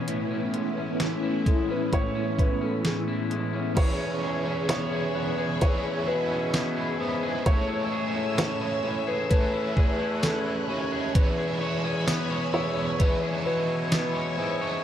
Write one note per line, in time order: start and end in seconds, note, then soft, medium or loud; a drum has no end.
0.00 1.00 E3 medium
0.00 3.73 E3 medium
0.00 0.17 B3 medium
0.00 3.73 B3 medium
0.00 0.30 C#4 medium
0.07 3.73 A2 medium
0.07 1.91 A2 medium
0.07 3.73 C#4 medium
0.07 3.73 E4 medium
0.07 1.22 E4 medium
0.07 closed hi-hat medium
0.31 0.77 C#4 soft
0.54 1.46 G#3 soft
0.54 closed hi-hat soft
0.77 1.69 C#4 soft
1.00 2.84 E3 medium
1.00 snare loud
1.00 closed hi-hat medium
1.23 1.92 E4 medium
1.46 2.38 G#3 medium
1.46 1.70 A4 medium
1.46 kick medium
1.46 closed hi-hat soft
1.69 2.15 C#4 medium
1.69 1.94 B4 medium
1.92 3.86 A2 medium
1.92 3.07 E4 medium
1.92 2.64 C#5 medium
1.92 kick medium
1.92 closed hi-hat medium
2.15 2.61 C#4 medium
2.38 3.30 G#3 soft
2.38 3.81 B4 medium
2.38 kick medium
2.38 closed hi-hat soft
2.61 3.53 C#4 soft
2.61 2.86 A4 medium
2.84 3.76 E3 medium
2.84 3.50 G#4 medium
2.84 snare medium
2.84 closed hi-hat medium
3.08 3.77 E4 medium
3.30 4.69 G#3 soft
3.30 closed hi-hat soft
3.53 3.99 C#4 soft
3.75 5.60 E2 medium
3.75 4.42 E2 medium
3.75 5.61 B2 medium
3.75 5.61 E3 medium
3.75 5.60 E3 medium
3.75 4.22 G#4 medium
3.75 7.42 G#4 medium
3.75 4.68 C#5 medium
3.75 7.42 E5 medium
3.75 7.42 B5 medium
3.75 7.42 C#6 medium
3.75 kick loud
3.75 closed hi-hat medium
3.75 crash loud
3.79 5.62 G#3 medium
3.79 5.63 C#4 medium
3.79 5.65 E4 medium
4.00 4.45 C#4 medium
4.23 4.92 G#4 medium
4.46 5.12 E2 medium
4.46 5.84 C#4 medium
4.69 5.14 B3 medium
4.69 5.41 C#5 medium
4.69 snare loud
4.69 closed hi-hat medium
4.69 tambourine medium
4.92 5.38 G#4 medium
5.15 6.04 E2 loud
5.15 6.53 B3 medium
5.38 5.61 G#4 medium
5.38 5.63 B4 medium
5.60 7.03 E3 medium
5.60 7.46 E3 medium
5.60 7.02 G#3 medium
5.60 7.01 C#4 medium
5.60 6.07 G#4 medium
5.60 6.09 C#5 medium
5.60 kick medium
5.60 closed hi-hat medium
5.65 6.99 E4 medium
5.84 6.30 C#4 medium
6.07 6.96 B2 loud
6.07 6.77 G#4 medium
6.07 7.50 B4 medium
6.31 7.69 C#4 soft
6.53 6.99 B3 medium
6.53 snare loud
6.53 closed hi-hat medium
6.53 tambourine medium
6.77 7.23 G#4 medium
6.99 7.44 G#2 medium
6.99 7.47 G#3 soft
6.99 7.55 B3 medium
6.99 7.47 C#4 soft
6.99 7.46 E4 soft
7.04 7.45 E3 soft
7.23 7.46 G#4 medium
7.44 9.30 A2 medium
7.44 7.86 A2 loud
7.44 9.29 E3 medium
7.44 10.72 G#3 medium
7.44 9.29 A3 medium
7.44 7.92 G#4 medium
7.44 8.37 C#5 loud
7.44 14.84 C#5 medium
7.44 11.12 E5 medium
7.44 14.84 G#5 medium
7.44 9.29 E6 medium
7.44 kick loud
7.44 closed hi-hat medium
7.50 9.32 C#4 medium
7.50 9.34 E4 medium
7.69 8.15 E4 medium
7.92 8.61 G#4 medium
8.15 8.81 A2 loud
8.15 9.53 E4 soft
8.38 8.83 C#4 medium
8.38 9.10 C#5 medium
8.38 snare loud
8.38 closed hi-hat medium
8.38 tambourine medium
8.61 9.07 G#4 medium
8.84 9.73 A2 loud
8.84 10.22 C#4 medium
9.07 9.30 G#4 medium
9.07 9.29 B4 medium
9.29 11.16 E3 medium
9.29 11.24 A3 medium
9.29 10.70 C#4 medium
9.29 9.76 G#4 medium
9.29 10.25 B4 medium
9.29 11.13 F#6 loud
9.29 kick medium
9.29 closed hi-hat medium
9.34 10.68 E4 medium
9.53 9.99 E4 medium
9.77 10.65 E2 loud
9.77 10.92 G#4 medium
9.77 kick medium
10.00 12.53 E4 medium
10.23 10.69 C#4 medium
10.23 10.88 A4 medium
10.23 snare loud
10.23 closed hi-hat medium
10.23 tambourine medium
10.68 11.13 D#2 medium
10.68 12.07 C#4 medium
10.68 11.16 C#4 medium
10.68 11.15 E4 medium
10.73 11.16 G#3 soft
10.92 11.38 G#4 medium
11.13 12.99 E2 medium
11.13 11.81 E2 medium
11.13 13.00 B2 medium
11.13 12.99 E3 medium
11.13 12.98 E3 medium
11.13 12.58 B4 medium
11.13 11.61 C#5 medium
11.13 12.97 B5 medium
11.13 14.84 E6 medium
11.13 kick loud
11.13 closed hi-hat medium
11.17 13.00 G#3 medium
11.17 13.01 C#4 medium
11.17 13.03 E4 medium
11.38 11.84 G#4 medium
11.61 12.30 C#5 medium
11.84 12.25 E2 loud
11.84 13.22 G#4 medium
12.07 13.90 B3 medium
12.07 snare loud
12.07 closed hi-hat medium
12.07 tambourine medium
12.30 12.76 C#5 medium
12.53 13.42 E2 loud
12.53 14.38 E4 medium
12.53 13.01 C#5 medium
12.76 12.99 C#5 medium
12.98 14.41 E3 medium
12.98 14.84 E3 medium
12.98 14.40 G#3 medium
12.98 14.38 C#4 medium
12.98 13.44 B4 medium
12.98 13.45 C#5 medium
12.98 14.82 C#6 medium
12.98 kick medium
12.98 closed hi-hat medium
13.03 14.37 E4 medium
13.22 13.68 G#4 medium
13.46 14.34 B2 loud
13.46 14.84 B4 loud
13.46 14.14 C#5 medium
13.69 14.84 G#4 medium
13.92 14.84 B3 medium
13.92 snare loud
13.92 closed hi-hat medium
13.92 tambourine medium
14.15 14.61 C#5 medium
14.37 14.82 G#2 medium
14.37 14.84 G#3 soft
14.37 14.84 C#4 medium
14.37 14.84 E4 medium
14.41 14.83 E3 soft
14.61 14.84 C#5 medium